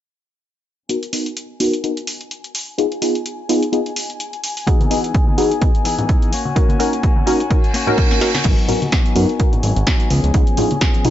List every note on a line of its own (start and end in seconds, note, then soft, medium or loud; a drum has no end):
0.89 0.97 B3 medium
0.89 0.97 D#4 medium
0.89 0.97 F#4 medium
0.89 0.97 A#4 medium
0.89 8.44 G#5 medium
0.89 closed hi-hat medium
1.03 closed hi-hat soft
1.12 1.25 B3 medium
1.12 1.25 D#4 medium
1.12 1.25 F#4 medium
1.12 1.25 A#4 medium
1.12 open hi-hat loud
1.26 closed hi-hat medium
1.37 closed hi-hat medium
1.60 1.72 B3 medium
1.60 1.72 D#4 medium
1.60 1.73 F#4 medium
1.60 1.73 A#4 loud
1.60 open hi-hat loud
1.73 closed hi-hat soft
1.83 1.91 B3 medium
1.83 1.91 D#4 medium
1.83 1.91 F#4 medium
1.83 1.92 A#4 medium
1.83 closed hi-hat medium
1.97 closed hi-hat soft
2.07 open hi-hat loud
2.21 closed hi-hat soft
2.31 closed hi-hat medium
2.44 closed hi-hat soft
2.55 open hi-hat loud
2.78 2.86 B3 medium
2.78 2.86 D#4 medium
2.78 2.86 F4 medium
2.78 2.86 G#4 medium
2.78 closed hi-hat medium
2.92 closed hi-hat soft
3.01 3.14 B3 medium
3.01 3.14 D#4 medium
3.01 3.14 F4 medium
3.01 3.14 G#4 medium
3.01 open hi-hat loud
3.15 closed hi-hat soft
3.26 closed hi-hat medium
3.49 3.61 B3 medium
3.49 3.62 D#4 medium
3.49 3.62 F4 medium
3.49 3.62 G#4 medium
3.49 open hi-hat loud
3.63 closed hi-hat soft
3.72 3.80 B3 medium
3.72 3.80 D#4 medium
3.72 3.80 F4 medium
3.72 3.81 G#4 medium
3.72 closed hi-hat medium
3.86 closed hi-hat soft
3.96 open hi-hat loud
4.10 closed hi-hat soft
4.20 closed hi-hat medium
4.33 closed hi-hat soft
4.44 open hi-hat loud
4.57 open hi-hat medium
4.67 4.89 E3 medium
4.67 4.75 B3 medium
4.67 4.90 B3 medium
4.67 4.75 D#4 medium
4.67 4.90 D#4 medium
4.67 4.75 F#4 medium
4.67 4.75 G#4 medium
4.67 4.91 G#4 medium
4.67 kick loud
4.67 closed hi-hat medium
4.81 closed hi-hat soft
4.81 high conga loud
4.81 shaker soft
4.90 5.12 E3 medium
4.90 5.03 B3 medium
4.90 5.13 B3 medium
4.90 5.03 D#4 medium
4.90 5.14 D#4 medium
4.90 5.03 F#4 medium
4.90 5.03 G#4 medium
4.90 5.14 G#4 medium
4.90 open hi-hat loud
5.04 closed hi-hat soft
5.04 shaker medium
5.14 5.27 E3 medium
5.14 5.28 B3 medium
5.14 5.27 D#4 medium
5.14 5.25 G#4 loud
5.14 kick loud
5.14 closed hi-hat medium
5.27 5.37 B3 medium
5.27 5.38 D#4 medium
5.27 5.38 G#4 medium
5.27 high conga medium
5.27 shaker soft
5.37 5.51 E3 medium
5.37 5.50 B3 medium
5.37 5.51 B3 medium
5.37 5.50 D#4 medium
5.37 5.50 F#4 medium
5.37 5.51 G#4 loud
5.37 5.49 G#4 medium
5.37 open hi-hat loud
5.51 5.84 B3 soft
5.51 5.85 D#4 soft
5.51 5.85 G#4 medium
5.51 closed hi-hat soft
5.61 5.69 B3 medium
5.61 5.69 D#4 medium
5.61 5.69 F#4 medium
5.61 5.69 G#4 medium
5.61 kick loud
5.61 closed hi-hat medium
5.75 closed hi-hat soft
5.84 6.07 E3 medium
5.84 6.08 B3 medium
5.84 6.08 D#4 medium
5.84 6.09 G#4 medium
5.84 open hi-hat loud
5.98 closed hi-hat soft
5.98 low conga medium
5.98 shaker medium
6.08 6.32 E3 medium
6.08 6.31 B3 medium
6.08 6.33 D#4 medium
6.08 6.33 G#4 medium
6.08 kick loud
6.08 closed hi-hat medium
6.08 shaker medium
6.22 closed hi-hat soft
6.32 6.45 A#3 medium
6.32 6.46 C#4 medium
6.32 6.44 F#4 medium
6.32 open hi-hat loud
6.45 6.55 C#4 soft
6.45 6.56 F#4 medium
6.45 high conga medium
6.45 shaker medium
6.56 6.78 A#3 medium
6.56 6.64 C#4 medium
6.56 6.79 C#4 medium
6.56 6.64 D#4 medium
6.56 6.64 F#4 medium
6.56 6.80 F#4 medium
6.56 6.64 A#4 medium
6.56 kick loud
6.56 closed hi-hat medium
6.56 shaker medium
6.69 closed hi-hat soft
6.69 high conga loud
6.69 shaker soft
6.79 7.02 A#3 medium
6.79 6.92 C#4 medium
6.79 7.03 C#4 medium
6.79 6.92 D#4 medium
6.79 6.92 F#4 medium
6.79 7.03 F#4 medium
6.79 6.92 A#4 medium
6.79 open hi-hat loud
6.93 closed hi-hat soft
7.03 7.17 A#3 medium
7.03 7.17 C#4 medium
7.03 7.15 F#4 medium
7.03 kick loud
7.03 closed hi-hat medium
7.16 7.26 C#4 medium
7.16 7.27 F#4 medium
7.16 high conga medium
7.16 shaker soft
7.26 7.40 A#3 medium
7.26 7.39 C#4 medium
7.26 7.41 C#4 medium
7.26 7.39 D#4 medium
7.26 7.39 F#4 medium
7.26 7.39 A#4 loud
7.26 open hi-hat loud
7.40 7.74 C#4 soft
7.40 7.74 F#4 medium
7.40 closed hi-hat soft
7.40 shaker medium
7.50 7.58 C#4 medium
7.50 7.58 D#4 medium
7.50 7.58 F#4 medium
7.50 7.58 A#4 medium
7.50 kick loud
7.50 closed hi-hat medium
7.50 reverse cymbal medium
7.64 closed hi-hat soft
7.74 7.96 A#3 medium
7.74 7.97 C#4 medium
7.74 7.98 F#4 medium
7.74 open hi-hat loud
7.87 8.19 C#4 medium
7.87 8.19 D#4 medium
7.87 8.19 F#4 medium
7.87 8.19 A#4 loud
7.87 closed hi-hat soft
7.87 low conga medium
7.87 shaker medium
7.97 8.20 A#3 medium
7.97 8.21 C#4 medium
7.97 8.22 F#4 medium
7.97 kick loud
7.97 closed hi-hat medium
7.97 shaker medium
8.11 snare medium
8.11 closed hi-hat soft
8.21 8.34 A#3 medium
8.21 8.29 C#4 medium
8.21 8.35 C#4 medium
8.21 8.29 D#4 medium
8.21 8.29 F#4 medium
8.21 8.33 F#4 medium
8.21 8.29 A#4 medium
8.21 snare medium
8.21 open hi-hat loud
8.34 8.45 C#4 medium
8.34 8.45 F#4 medium
8.34 snare medium
8.34 open hi-hat medium
8.34 high conga medium
8.34 shaker medium
8.44 8.55 G#1 loud
8.44 8.67 F#3 medium
8.44 8.52 B3 medium
8.44 8.67 B3 medium
8.44 8.53 D#4 medium
8.44 8.53 F#4 medium
8.44 8.69 F#4 medium
8.44 8.53 A#4 medium
8.44 kick loud
8.44 closed hi-hat loud
8.44 crash medium
8.58 closed hi-hat soft
8.68 8.82 F#3 medium
8.68 8.81 B3 medium
8.68 8.82 B3 medium
8.68 8.81 D#4 medium
8.68 8.81 F#4 medium
8.68 8.80 F#4 medium
8.68 8.81 A#4 medium
8.68 open hi-hat loud
8.68 low conga medium
8.81 8.91 B3 medium
8.81 8.92 D#4 medium
8.81 8.92 F#4 medium
8.81 closed hi-hat soft
8.81 high conga medium
8.81 shaker medium
8.92 9.14 F#3 medium
8.92 9.15 B3 medium
8.92 9.16 D#4 medium
8.92 9.16 F#4 medium
8.92 kick loud
8.92 snare loud
8.92 closed hi-hat medium
9.06 closed hi-hat soft
9.15 9.26 F#2 medium
9.15 9.29 F#3 medium
9.15 9.28 B3 medium
9.15 9.29 B3 medium
9.15 9.28 D#4 medium
9.15 9.28 F#4 medium
9.15 9.27 F#4 medium
9.15 9.28 A#4 loud
9.15 open hi-hat loud
9.28 9.53 B3 soft
9.28 9.52 D#4 soft
9.28 9.51 F#4 medium
9.28 closed hi-hat soft
9.39 9.47 B3 medium
9.39 9.47 D#4 medium
9.39 9.47 F#4 medium
9.39 9.48 A#4 medium
9.39 kick loud
9.39 closed hi-hat medium
9.52 9.62 B3 medium
9.52 9.63 D#4 medium
9.52 9.63 F#4 medium
9.52 closed hi-hat soft
9.52 low conga medium
9.52 shaker soft
9.62 9.73 G#1 loud
9.62 9.76 F#3 medium
9.62 9.77 B3 medium
9.62 9.76 D#4 medium
9.62 9.74 F#4 medium
9.62 open hi-hat loud
9.75 9.84 G#1 medium
9.75 9.86 B3 soft
9.75 9.87 D#4 medium
9.75 9.86 F#4 medium
9.75 closed hi-hat soft
9.86 10.10 F#3 medium
9.86 10.09 B3 medium
9.86 10.11 D#4 medium
9.86 10.11 F#4 loud
9.86 kick loud
9.86 snare loud
9.86 closed hi-hat loud
10.00 closed hi-hat soft
10.10 10.21 C#2 medium
10.10 10.56 F3 medium
10.10 10.57 B3 medium
10.10 10.57 C#4 medium
10.10 10.59 G#4 medium
10.10 open hi-hat loud
10.24 10.32 C#2 medium
10.24 closed hi-hat soft
10.34 10.44 C#2 loud
10.34 10.42 B3 medium
10.34 10.42 D#4 medium
10.34 10.42 F4 medium
10.34 10.42 G#4 medium
10.34 kick loud
10.34 closed hi-hat medium
10.47 closed hi-hat soft
10.47 shaker soft
10.57 10.71 F3 medium
10.57 10.70 B3 medium
10.57 10.71 B3 medium
10.57 10.70 C#4 medium
10.57 10.70 D#4 medium
10.57 10.70 F4 medium
10.57 10.70 G#4 medium
10.57 10.69 G#4 medium
10.57 open hi-hat loud
10.57 low conga medium
10.70 10.80 B3 medium
10.70 10.81 C#4 medium
10.70 10.81 G#4 medium
10.70 closed hi-hat soft
10.70 high conga medium
10.70 shaker medium
10.81 11.03 F3 medium
10.81 11.04 B3 medium
10.81 11.05 C#4 medium
10.81 11.06 G#4 loud
10.81 kick loud
10.81 snare loud
10.81 closed hi-hat medium
10.94 closed hi-hat soft
11.04 11.10 B2 medium
11.04 11.10 F3 medium
11.04 11.10 B3 medium
11.04 11.10 C#4 medium
11.04 11.10 D#4 medium
11.04 11.10 F4 medium
11.04 11.10 G#4 loud
11.04 11.10 G#4 medium
11.04 open hi-hat loud